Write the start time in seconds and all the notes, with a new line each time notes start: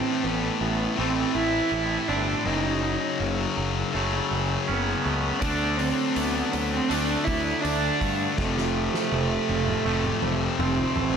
Already playing: A2 E3 A3 C4
0.23 A1 E3 B3
0.60 A1 A3 B3
0.97 A1 A2 E3 A3 C4
1.34 A1 A3 E4
1.71 A1 E4
2.08 G1 C4 D4
2.45 F#1 F#2 C#3 F#3 D#4
2.83 F#3
3.20 F#1 C#3
3.57 F#1 F#3
3.93 F#1 F#2 C#3 F#3 A3
4.31 F#1 F#3
4.67 F#1 B3 C#4
5.05 C#2 A3
5.40 D2 D3 A3 D4, kick, open hi-hat
5.45 D4
5.78 F#3 C4, open hi-hat
6.15 D2 D3 B3, open hi-hat
6.52 D2 F#3, open hi-hat
6.70 C4
6.89 D2 D3 A3 D4, open hi-hat
7.24 D2 F#3 E4, kick, open hi-hat
7.61 D2 D4, open hi-hat
8.00 G2 A3, kick, open hi-hat
8.36 F1 F2 C3 A3, kick, snare
8.41 F3
8.58 snare
8.74 F3
8.94 snare
9.12 F1 C3, high tom
9.49 F1 F3, high tom
9.68 mid tom
9.85 F1 F2 C3 F3 A3
10.04 mid tom
10.22 F1 F3, mid tom
10.58 F1 C4, mid tom
10.78 floor tom
10.96 A1 A3, floor tom
11.14 floor tom